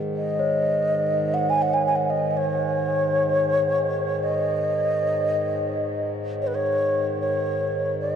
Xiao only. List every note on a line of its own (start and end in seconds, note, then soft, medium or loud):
0.15 1.36 D#5 medium
1.34 1.51 F#5 medium
1.50 1.64 G#5 medium
1.62 1.75 F#5 medium
1.74 1.85 G#5 medium
1.86 1.97 G#5 medium
1.96 2.12 F#5 medium
2.10 2.31 D#5 medium
2.31 2.38 D#5 medium
2.37 4.25 C#5 medium
4.23 6.13 D#5 medium
6.42 6.49 C#5 medium
6.47 6.56 B4 medium
6.55 7.20 C#5 medium
7.21 7.95 C#5 medium
8.01 8.16 D#5 medium